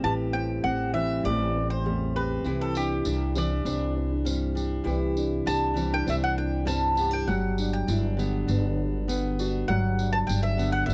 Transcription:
Already playing: steel-string acoustic guitar E3 G3 C4, upright piano A3 C4
0.03 upright bass A1, steel-string acoustic guitar A2 G4, upright piano E3 G4, mandolin A5
0.33 upright piano C4, mandolin G5
0.64 upright bass A1, steel-string acoustic guitar C4, upright piano G4, mandolin F#5
0.93 steel-string acoustic guitar E3 G3, upright piano C4, mandolin E5
1.24 upright bass A1, upright piano A3, steel-string acoustic guitar C4, mandolin D5
1.56 upright piano C4
1.70 mandolin C5
1.85 steel-string acoustic guitar E2 G3, upright piano A3
2.15 steel-string acoustic guitar C4, upright piano G4, mandolin B4
2.44 upright bass C2, steel-string acoustic guitar C3 E4, upright piano E3 G4, tambourine
2.61 mandolin A4
2.75 upright piano D4, mandolin G4, tambourine
3.05 upright bass C2, steel-string acoustic guitar D4, upright piano G4, tambourine
3.35 steel-string acoustic guitar E3 G3, upright piano C4, mandolin D5, tambourine
3.51 upright piano D4
3.65 upright bass C2, upright piano C4, steel-string acoustic guitar D4, tambourine
3.96 upright piano C4
4.12 upright piano D4
4.25 steel-string acoustic guitar G2 G3, upright piano C4, tambourine
4.55 steel-string acoustic guitar D4, upright piano G4, tambourine
4.84 upright bass C2, steel-string acoustic guitar C3 E4, upright piano E3 G4, tambourine
5.16 upright piano D4, tambourine
5.46 upright bass C2, steel-string acoustic guitar D4, upright piano G4, mandolin A5, tambourine
5.74 steel-string acoustic guitar E3 G3, upright piano C4, tambourine
5.92 upright piano D4, mandolin G5
6.07 upright bass C2, upright piano C4, steel-string acoustic guitar D4, mandolin E5, tambourine
6.24 mandolin F#5
6.38 upright piano D4, mandolin G5
6.65 steel-string acoustic guitar G2 G3, upright piano C4, mandolin A5, tambourine
6.95 steel-string acoustic guitar B3, upright piano G4, tambourine
7.11 steel-string acoustic guitar D4, mandolin G5
7.27 upright bass G1, steel-string acoustic guitar G2, upright piano F#3, mandolin F#5, tambourine
7.58 upright piano D4, tambourine
7.73 mandolin G5
7.87 upright bass G1, steel-string acoustic guitar D4, upright piano E4, tambourine
8.17 steel-string acoustic guitar D3 B3, upright piano D4, tambourine
8.48 upright bass G1, upright piano B3, steel-string acoustic guitar D4, tambourine
8.79 upright piano D4
9.08 steel-string acoustic guitar G2 B3, upright piano B3, tambourine
9.39 steel-string acoustic guitar D4, upright piano F#4, tambourine
9.68 upright bass G1, steel-string acoustic guitar G2, upright piano F#3, mandolin F#5
9.99 upright piano D4, tambourine
10.13 mandolin A5
10.27 upright bass G1, steel-string acoustic guitar D4, mandolin G5, tambourine
10.43 mandolin E5
10.57 steel-string acoustic guitar D3 B3, upright piano D4, tambourine
10.72 mandolin F#5
10.86 upright bass G1, steel-string acoustic guitar D4, mandolin E5, tambourine
10.91 upright piano B3

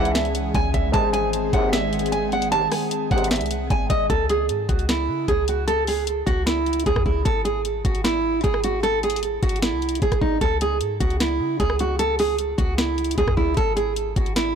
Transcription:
Already playing: 808-style bass C#2, brass ensemble G#2 C#3 E3, grand piano C#3 G#3 E4 C#5, analog synth pad E3 G#3 C#4 G#4, nylon-string guitar F#5
0.05 closed hi-hat
0.15 nylon-string guitar E5, snare, closed hi-hat
0.25 closed hi-hat
0.35 closed hi-hat
0.54 808-style bass C#2, nylon-string guitar G#5, kick, closed hi-hat
0.74 808-style bass C#2, nylon-string guitar E5, kick, closed hi-hat
0.92 808-style bass G#1, brass ensemble G#2 C3 D#3, analog synth pad D#3 G#3 C4 G#4, grand piano G#3 G#4 C5, nylon-string guitar A5, kick, closed hi-hat
1.13 nylon-string guitar G#5, closed hi-hat
1.33 closed hi-hat
1.53 808-style bass G#1, brass ensemble D#2 G#2 C3, nylon-string guitar F#5, kick, closed hi-hat
1.73 nylon-string guitar E5, snare, closed hi-hat
1.93 closed hi-hat
1.99 closed hi-hat
2.06 closed hi-hat
2.12 nylon-string guitar G#5, closed hi-hat
2.32 nylon-string guitar F#5, closed hi-hat
2.42 closed hi-hat
2.52 brass ensemble D#2 G#2 C3, nylon-string guitar A5, closed hi-hat
2.72 nylon-string guitar G#5, cross-stick, open hi-hat
2.91 closed hi-hat
3.11 808-style bass G#1, brass ensemble D#2 G#2 C3, nylon-string guitar F#5, kick, closed hi-hat
3.18 closed hi-hat
3.24 closed hi-hat
3.31 nylon-string guitar E5, snare, closed hi-hat
3.36 closed hi-hat
3.41 808-style bass C2, closed hi-hat
3.46 closed hi-hat
3.51 closed hi-hat
3.70 808-style bass G#1, nylon-string guitar G#5, kick, closed hi-hat
3.90 808-style bass G#1, nylon-string guitar D#5, kick, closed hi-hat
4.10 808-style bass C#2, nylon-string guitar A4, kick, closed hi-hat
4.29 nylon-string guitar G#4, closed hi-hat
4.49 808-style bass G#2, closed hi-hat
4.69 808-style bass C#2, nylon-string guitar F#4, kick, closed hi-hat
4.79 closed hi-hat
4.89 nylon-string guitar E4, snare, closed hi-hat
5.09 808-style bass C#3
5.28 808-style bass C#2, nylon-string guitar G#4, kick, closed hi-hat
5.48 nylon-string guitar F#4, closed hi-hat
5.67 nylon-string guitar A4, closed hi-hat
5.87 nylon-string guitar G#4, open hi-hat
6.07 closed hi-hat
6.26 808-style bass C#2, nylon-string guitar F#4, kick, closed hi-hat
6.46 nylon-string guitar E4, snare, closed hi-hat
6.66 closed hi-hat
6.73 closed hi-hat
6.80 closed hi-hat
6.86 808-style bass C#2, nylon-string guitar G#4, kick, closed hi-hat
6.96 808-style bass E2, kick, cross-stick
7.06 808-style bass C#2, nylon-string guitar E4, kick
7.25 808-style bass G#1, nylon-string guitar A4, kick, closed hi-hat
7.45 nylon-string guitar G#4, closed hi-hat
7.65 closed hi-hat
7.85 808-style bass G#1, nylon-string guitar F#4, kick, closed hi-hat
7.95 closed hi-hat
8.04 nylon-string guitar E4, snare, closed hi-hat
8.44 808-style bass G#1, nylon-string guitar G#4, kick, closed hi-hat
8.54 cross-stick
8.64 nylon-string guitar F#4, closed hi-hat
8.83 nylon-string guitar A4, closed hi-hat
9.03 nylon-string guitar G#4, closed hi-hat
9.10 closed hi-hat
9.16 closed hi-hat
9.23 closed hi-hat
9.43 808-style bass G#1, nylon-string guitar F#4, kick, closed hi-hat
9.49 closed hi-hat
9.56 closed hi-hat
9.62 nylon-string guitar E4, snare, closed hi-hat
9.72 808-style bass C2
9.82 closed hi-hat
9.89 closed hi-hat
9.95 closed hi-hat
10.02 808-style bass G#1, nylon-string guitar G#4, kick, closed hi-hat
10.12 808-style bass G#1, kick, cross-stick, closed hi-hat
10.21 808-style bass G#1, nylon-string guitar D#4, kick
10.41 808-style bass C#2, nylon-string guitar A4, kick, closed hi-hat
10.61 nylon-string guitar G#4, closed hi-hat
10.81 808-style bass G#2, closed hi-hat
11.00 808-style bass C#2, nylon-string guitar F#4, kick, closed hi-hat
11.10 closed hi-hat
11.20 nylon-string guitar E4, snare, closed hi-hat
11.40 808-style bass C#3
11.60 808-style bass C#2, nylon-string guitar G#4, kick, closed hi-hat
11.70 cross-stick
11.79 nylon-string guitar F#4, closed hi-hat
11.99 nylon-string guitar A4, closed hi-hat
12.19 nylon-string guitar G#4, open hi-hat
12.39 closed hi-hat
12.58 808-style bass C#2, nylon-string guitar F#4, kick, closed hi-hat
12.78 nylon-string guitar E4, snare, closed hi-hat
12.98 closed hi-hat
13.04 closed hi-hat
13.11 closed hi-hat
13.18 808-style bass C#2, nylon-string guitar G#4, kick, closed hi-hat
13.28 808-style bass E2, kick, cross-stick
13.37 808-style bass C#2, nylon-string guitar E4, kick
13.57 808-style bass G#1, nylon-string guitar A4, kick, closed hi-hat
13.76 nylon-string guitar G#4, closed hi-hat
13.96 closed hi-hat
14.16 808-style bass G#1, nylon-string guitar F#4, kick, closed hi-hat
14.26 closed hi-hat
14.36 nylon-string guitar E4, snare, closed hi-hat

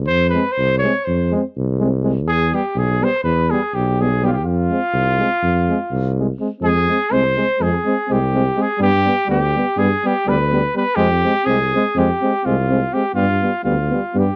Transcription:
Already playing: tuba C2
0.07 tuba F2, trumpet C5
0.30 trumpet B4
0.34 trombone G#3, euphonium C4
0.52 trumpet C5
0.58 tuba C2
0.78 trumpet C#5
0.83 trombone G#3, euphonium C4
1.05 tuba F2, trumpet C5
1.32 trombone G#3, euphonium C4
1.57 tuba C2
1.79 trombone G#3, euphonium C4
2.03 trombone G#3, euphonium C4
2.25 tuba E2, trumpet G#4
2.52 trombone G3, euphonium B3, trumpet G4
2.75 tuba B1, trumpet G#4
3.00 trombone G3, euphonium B3, trumpet C5
3.24 tuba E2, trumpet B4
3.50 trombone G3, euphonium B3, trumpet G#4
3.74 tuba B1, trumpet G4
3.99 trombone G3, euphonium B3, trumpet G#4
4.21 trombone G3, euphonium B3, trumpet G4
4.27 trumpet F4
4.33 trumpet G4
4.43 tuba F2, trumpet F4
4.70 trombone G#3, euphonium C4
4.93 tuba C2
5.19 trombone G#3, euphonium C4
5.43 tuba F2
5.69 trombone G#3, euphonium C4
5.92 tuba C2
6.18 trombone G#3, euphonium C4
6.40 trombone G#3, euphonium C4
6.60 tuba F2, trombone G#3, euphonium C4
6.64 trumpet G#4
6.88 trombone G#3, euphonium C4
7.11 tuba C2, trombone G#3, euphonium C4, trumpet C5
7.35 trombone G#3, euphonium C4
7.59 tuba F2, trombone G#3, euphonium C4, trumpet G#4
7.85 trombone G#3, euphonium C4
8.08 tuba C2, trombone G#3, euphonium C4, trumpet G4
8.34 trombone G#3, euphonium C4
8.57 trombone G#3, euphonium C4
8.61 trumpet G#4
8.78 tuba G2, trombone G3, euphonium B3, trumpet G4
9.04 trombone G3, euphonium B3
9.27 tuba D2, trombone G3, euphonium B3, trumpet G4
9.55 trombone G3, euphonium B3
9.77 tuba G2, trombone G3, euphonium B3, trumpet G#4
10.04 trombone G3, euphonium B3, trumpet G4
10.26 tuba D2, trombone G3, euphonium B3, trumpet B4
10.51 trombone G3, euphonium B3
10.75 trombone G3, euphonium B3, trumpet B4
10.95 tuba F2, trombone G#3, euphonium C4, trumpet G4
11.23 trombone G#3, euphonium C4
11.45 tuba C2, trombone G#3, euphonium C4, trumpet G#4
11.74 trombone G#3, euphonium C4
11.96 tuba F2, trombone G#3, euphonium C4, trumpet G4
12.22 trombone G#3, euphonium C4
12.45 tuba C2, trombone G#3, euphonium C4, trumpet F4
12.70 trombone G#3, euphonium C4
12.93 trombone G#3, euphonium C4, trumpet G4
13.14 tuba G2, trombone G3, euphonium B3, trumpet F4
13.42 trombone G3, euphonium B3
13.64 tuba D2, trombone G3, euphonium B3, trumpet F4
13.89 trombone G3, euphonium B3
14.14 tuba G2, trombone G3, euphonium B3
14.18 trumpet G4

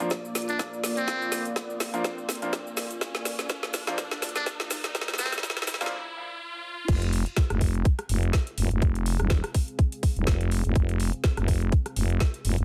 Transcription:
Already playing: analog synth pad A#3 F4 D5, riser
0.00 grand piano F3 A#3 D4 F4, closed hi-hat, cabasa
0.10 kick, snare, closed hi-hat, cabasa
0.25 cabasa
0.35 snare, open hi-hat, cabasa
0.42 closed hi-hat
0.48 muted trumpet D4, closed hi-hat, cabasa
0.59 kick, snare, closed hi-hat, cabasa
0.73 cabasa
0.84 snare, open hi-hat, cabasa
0.97 muted trumpet C4, closed hi-hat, cabasa
1.08 kick, snare, closed hi-hat, cabasa
1.22 cabasa
1.32 snare, open hi-hat, cabasa
1.45 closed hi-hat, cabasa
1.56 kick, snare, closed hi-hat, cabasa
1.70 cabasa
1.80 kick, snare, open hi-hat, cabasa
1.94 grand piano F3 A#3 D4 F4, closed hi-hat, cabasa
2.04 kick, snare, closed hi-hat, cabasa
2.18 cabasa
2.29 kick, snare, open hi-hat, cabasa
2.35 closed hi-hat
2.42 grand piano F3 A#3 D4 F4, closed hi-hat, cabasa
2.53 kick, snare, closed hi-hat, cabasa
2.67 cabasa
2.77 snare, open hi-hat, cabasa
2.90 closed hi-hat, cabasa
3.01 kick, snare, closed hi-hat, cabasa
3.15 snare, cabasa
3.25 snare, open hi-hat, cabasa
3.39 snare, cabasa
3.49 kick, snare, closed hi-hat, cabasa
3.63 snare, cabasa
3.73 kick, snare, open hi-hat, cabasa
3.87 grand piano F3 A#3 D4 F4, snare, closed hi-hat, cabasa
3.98 kick, snare, closed hi-hat, cabasa
4.11 snare, cabasa
4.22 snare, open hi-hat, cabasa
4.29 closed hi-hat
4.35 muted trumpet D4, snare, closed hi-hat, cabasa
4.46 kick, snare, closed hi-hat, cabasa
4.60 snare, cabasa
4.70 snare, open hi-hat, cabasa
4.84 snare, closed hi-hat, cabasa
4.95 kick, snare, closed hi-hat, cabasa
5.01 snare
5.08 snare, cabasa
5.14 snare
5.18 muted trumpet C4, snare, open hi-hat, cabasa
5.26 snare
5.32 snare, closed hi-hat, cabasa
5.38 snare
5.43 kick, snare, closed hi-hat, cabasa
5.50 snare
5.57 snare, cabasa
5.62 snare
5.67 kick, snare, open hi-hat, cabasa
5.74 snare
5.81 grand piano F3 A#3 D4 F4, snare, closed hi-hat, cabasa
5.86 snare
6.88 fm bass F1, analog synth pad C4 G#4 F5, kick, closed hi-hat, crash
7.02 closed hi-hat
7.13 open hi-hat
7.26 closed hi-hat
7.37 kick, snare, closed hi-hat
7.50 fm bass F1, cross-stick, closed hi-hat
7.61 kick, open hi-hat
7.74 closed hi-hat
7.85 kick, closed hi-hat
7.99 cross-stick, closed hi-hat
8.09 fm bass F1, open hi-hat
8.23 closed hi-hat
8.33 kick, snare, closed hi-hat
8.47 closed hi-hat
8.58 fm bass F1, open hi-hat
8.71 fm bass F1, closed hi-hat
8.82 kick, closed hi-hat
8.95 closed hi-hat
9.06 open hi-hat
9.20 fm bass D#1, cross-stick, closed hi-hat
9.30 kick, snare, closed hi-hat
9.44 cross-stick, closed hi-hat
9.54 kick, open hi-hat
9.68 closed hi-hat
9.79 kick, closed hi-hat
9.92 closed hi-hat
10.03 kick, open hi-hat
10.16 fm bass D#1, closed hi-hat
10.27 fm bass F1, kick, snare, closed hi-hat
10.41 closed hi-hat
10.51 open hi-hat
10.65 fm bass F1, closed hi-hat
10.75 fm bass F1, kick, closed hi-hat
10.89 closed hi-hat
11.00 open hi-hat
11.13 closed hi-hat
11.24 kick, snare, closed hi-hat
11.37 fm bass F1, cross-stick, closed hi-hat
11.48 kick, open hi-hat
11.62 closed hi-hat
11.72 kick, closed hi-hat
11.86 cross-stick, closed hi-hat
11.96 fm bass F1, open hi-hat
12.10 closed hi-hat
12.20 kick, snare, closed hi-hat
12.34 closed hi-hat
12.45 fm bass F1, open hi-hat
12.58 fm bass F1, closed hi-hat

